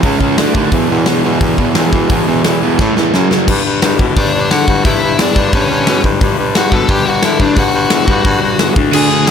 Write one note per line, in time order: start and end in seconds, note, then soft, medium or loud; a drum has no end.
0.03 0.19 C#2 loud
0.03 0.20 C#3 medium
0.03 0.19 G#3 loud
0.03 0.19 C#4 medium
0.03 kick loud
0.03 open hi-hat medium
0.20 0.36 C#2 medium
0.20 0.37 C#3 medium
0.20 0.37 G#3 medium
0.20 0.37 C#4 medium
0.20 kick medium
0.38 0.54 D2 medium
0.38 0.55 D3 loud
0.38 0.55 A3 loud
0.38 0.54 D4 loud
0.38 snare loud
0.38 open hi-hat medium
0.55 0.70 D#2 medium
0.55 0.72 D3 medium
0.55 0.72 A3 medium
0.55 0.71 D4 medium
0.55 kick loud
0.72 0.87 E2 medium
0.72 0.90 E2 loud
0.72 0.89 B2 loud
0.72 0.90 E3 loud
0.72 kick loud
0.72 open hi-hat medium
0.90 1.05 E2 medium
0.90 1.06 E2 medium
0.90 1.07 B2 medium
0.90 1.07 E3 loud
1.06 1.24 E2 medium
1.06 1.22 E2 medium
1.06 1.24 B2 medium
1.06 1.23 E3 loud
1.06 snare loud
1.06 open hi-hat medium
1.24 1.40 E2 medium
1.24 1.41 E2 medium
1.24 1.41 B2 medium
1.24 1.42 E3 medium
1.41 1.56 E2 loud
1.41 1.59 E2 medium
1.41 1.58 B2 loud
1.41 1.58 E3 loud
1.41 kick loud
1.41 open hi-hat medium
1.58 1.74 E2 medium
1.58 1.75 E2 medium
1.58 1.76 B2 medium
1.58 1.77 E3 medium
1.58 kick medium
1.75 1.91 E2 loud
1.75 1.93 E2 medium
1.75 1.93 B2 loud
1.75 1.92 E3 loud
1.75 snare loud
1.75 open hi-hat medium
1.93 2.08 E2 loud
1.93 2.10 E2 medium
1.93 2.10 B2 medium
1.93 2.10 E3 medium
1.93 kick medium
2.09 2.25 E2 loud
2.09 2.28 E2 medium
2.09 2.28 B2 loud
2.09 2.27 E3 loud
2.09 kick loud
2.09 open hi-hat medium
2.28 2.43 E2 loud
2.28 2.44 E2 medium
2.28 2.45 B2 medium
2.28 2.45 E3 medium
2.44 2.60 E2 medium
2.44 2.62 E2 medium
2.44 2.62 B2 loud
2.44 2.61 E3 loud
2.44 snare loud
2.44 open hi-hat medium
2.62 2.77 E2 medium
2.62 2.79 E2 medium
2.62 2.79 B2 medium
2.62 2.78 E3 medium
2.79 2.94 A2 loud
2.79 2.97 A2 medium
2.79 2.96 E3 loud
2.79 2.95 A3 loud
2.79 kick loud
2.79 snare medium
2.96 3.11 E2 medium
2.96 3.13 A2 medium
2.96 3.13 E3 medium
2.96 3.12 A3 medium
2.96 snare medium
3.13 3.28 F#2 loud
3.13 3.31 F#2 medium
3.13 3.30 C#3 loud
3.13 3.30 F#3 loud
3.13 snare medium
3.31 3.47 F#2 medium
3.31 3.47 C#3 medium
3.31 3.47 F#3 medium
3.31 snare medium
3.47 4.01 G2 medium
3.47 3.63 G2 loud
3.47 3.98 D3 loud
3.47 3.97 G3 loud
3.47 kick loud
3.47 crash loud
3.65 3.79 G2 medium
3.82 3.97 G2 loud
3.82 snare loud
3.82 open hi-hat medium
3.98 4.83 G2 medium
3.98 4.14 B2 medium
3.98 4.84 D3 medium
3.98 4.86 G3 medium
3.98 kick loud
4.17 4.31 G2 loud
4.17 4.49 D4 medium
4.17 4.52 D5 medium
4.17 kick loud
4.17 open hi-hat medium
4.34 4.48 G2 medium
4.51 4.65 D3 loud
4.51 4.83 F#4 medium
4.51 4.82 F#5 loud
4.51 snare loud
4.51 open hi-hat medium
4.68 4.82 G2 loud
4.68 kick loud
4.83 5.38 G2 loud
4.83 4.99 G2 loud
4.83 5.35 D3 loud
4.83 5.35 G3 loud
4.83 5.17 E4 medium
4.83 5.16 E5 loud
4.83 kick loud
4.83 open hi-hat medium
5.03 5.17 G2 medium
5.19 5.34 E2 medium
5.19 5.52 D4 medium
5.19 5.55 D5 medium
5.19 snare loud
5.19 open hi-hat medium
5.35 5.51 G2 medium
5.35 6.20 G2 medium
5.35 6.21 D3 medium
5.35 6.23 G3 medium
5.35 kick loud
5.53 5.68 G2 loud
5.53 6.02 C#4 medium
5.53 6.02 C#5 medium
5.53 kick loud
5.53 open hi-hat medium
5.71 5.85 G2 loud
5.87 6.02 B2 loud
5.87 snare loud
5.87 open hi-hat medium
6.04 6.19 G2 loud
6.04 kick medium
6.20 6.74 G2 loud
6.20 6.36 G2 loud
6.20 6.72 D3 loud
6.20 6.71 G3 loud
6.20 kick loud
6.20 open hi-hat medium
6.39 6.53 G2 loud
6.55 6.70 G2 loud
6.55 6.72 F#4 medium
6.55 6.73 F#5 medium
6.55 snare loud
6.55 open hi-hat medium
6.71 7.54 G2 medium
6.71 6.87 B2 medium
6.71 7.56 D3 medium
6.71 7.56 G3 medium
6.71 6.88 A4 medium
6.71 6.90 A5 medium
6.71 kick loud
6.89 7.04 G2 loud
6.89 7.05 G4 medium
6.89 7.07 G5 loud
6.89 kick loud
6.89 open hi-hat medium
7.07 7.21 G2 medium
7.07 7.22 F#4 medium
7.07 7.25 F#5 medium
7.23 7.38 D3 loud
7.23 7.40 E4 soft
7.23 7.42 E5 loud
7.23 snare loud
7.23 open hi-hat medium
7.40 7.55 G2 loud
7.40 7.57 D4 medium
7.40 7.59 D5 medium
7.40 kick medium
7.55 8.06 G2 medium
7.55 7.72 G2 loud
7.55 8.07 D3 loud
7.55 8.06 G3 loud
7.55 8.73 F#4 medium
7.55 8.73 F#5 loud
7.55 kick loud
7.55 open hi-hat medium
7.74 7.89 G2 loud
7.90 8.06 E2 medium
7.90 snare loud
7.90 open hi-hat medium
8.07 8.23 G2 loud
8.07 8.77 G2 medium
8.07 8.74 D3 medium
8.07 8.75 G3 medium
8.07 kick loud
8.25 8.40 G2 loud
8.25 kick loud
8.25 open hi-hat medium
8.42 8.57 G2 medium
8.59 8.74 E2 loud
8.59 snare loud
8.59 open hi-hat medium
8.76 8.91 D2 loud
8.76 9.26 D3 medium
8.76 9.28 A3 medium
8.76 9.29 D4 loud
8.76 kick loud
8.91 9.08 D2 loud
8.91 9.31 D3 loud
8.91 9.31 A3 medium
8.91 9.31 G#4 medium
8.91 crash loud
8.95 9.31 D4 loud
8.95 9.31 G#5 loud
9.11 9.25 D2 medium
9.26 9.31 D3 medium
9.26 snare loud
9.26 open hi-hat medium